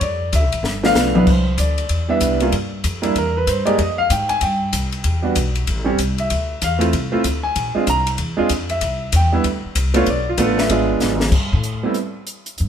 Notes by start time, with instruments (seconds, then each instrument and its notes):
0.01 upright bass F2, grand piano D5, kick, ride
0.33 upright bass D2, grand piano E5, kick, hi-hat pedal, ride
0.44 upright bass C2
0.52 upright bass A1, ride
0.63 upright bass G1, snare
0.83 grand piano F3 A3 B3 D4 F5, snare
0.94 upright bass B1, snare, hi-hat pedal
1.14 grand piano C2 E3 G3 B3 D4 B4, mid tom
1.27 upright bass C2, grand piano C5, kick, crash
1.58 upright bass D2, grand piano D5, kick, hi-hat pedal, ride
1.78 ride
1.89 upright bass E2, kick, ride
2.08 grand piano E3 G3 B3 D4 E5
2.21 upright bass C2, kick, hi-hat pedal, ride
2.40 grand piano G3 A#3 C#4 F4, ride
2.52 upright bass G2, kick, ride
2.84 upright bass F2, kick, hi-hat pedal, ride
3.02 grand piano G3 A#3 D4 E4, ride
3.15 upright bass E2, grand piano A#4, kick, ride
3.37 grand piano B4
3.47 upright bass G2, grand piano C5, kick, hi-hat pedal, ride
3.65 grand piano G#3 A#3 D#4 G4 D5, ride
3.79 upright bass F2, grand piano D#5, kick, ride
3.98 grand piano F5
4.10 upright bass G#2, grand piano G5, kick, hi-hat pedal, ride
4.29 grand piano G#5, ride
4.41 upright bass G2, grand piano G5, kick, ride
4.73 upright bass C2, kick, hi-hat pedal, ride
4.92 ride
5.04 upright bass E2, kick, ride
5.22 grand piano G3 B3 D4 F#4
5.35 upright bass B1, kick, hi-hat pedal, ride
5.55 ride
5.67 upright bass A1, kick, ride
5.84 grand piano G3 C4 C#4 G4
5.98 upright bass C2, kick, hi-hat pedal, ride
6.18 grand piano E5, ride
6.30 upright bass D2, kick, ride
6.62 upright bass E2, grand piano F5, kick, hi-hat pedal, ride
6.79 grand piano A3 C4 E4 F4, ride
6.93 upright bass C2, kick, ride
7.12 grand piano A3 C4 E4 F4, muted upright bass stroke
7.24 upright bass D2, kick, hi-hat pedal, ride
7.43 grand piano G#5
7.56 upright bass A#1, kick, ride
7.75 grand piano G#3 C4 D4 F4, muted upright bass stroke
7.87 upright bass C2, grand piano A#5, kick, hi-hat pedal, ride
8.07 ride
8.18 upright bass E2, kick, ride
8.37 grand piano G#3 C4 D4 F4, muted upright bass stroke
8.49 upright bass F2, kick, hi-hat pedal, ride
8.69 grand piano E5, ride
8.81 upright bass C2, kick, ride
9.12 upright bass E2, grand piano G5, kick, hi-hat pedal, ride
9.32 grand piano G3 B3 D4 E4
9.44 upright bass D2, kick, ride
9.65 muted upright bass stroke
9.75 upright bass C2, kick, hi-hat pedal, ride
9.94 grand piano A3 B3 D4 F4 C#5, ride
10.06 upright bass B1, grand piano D5, kick, ride
10.29 grand piano F4
10.38 upright bass A1, grand piano A3 B3 D4 F4, kick, hi-hat pedal, ride
10.42 grand piano A4
10.58 grand piano E5, snare
10.69 upright bass G#1, grand piano G#3 B3 D4 F4, kick, ride
11.00 upright bass G#1, snare, hi-hat pedal
11.20 snare
11.32 upright bass G2, kick, crash
11.53 upright bass A2
11.63 closed hi-hat
11.83 grand piano G3 A3 B3 C4 E4
11.94 closed hi-hat
12.27 closed hi-hat
12.46 closed hi-hat
12.58 upright bass G2, closed hi-hat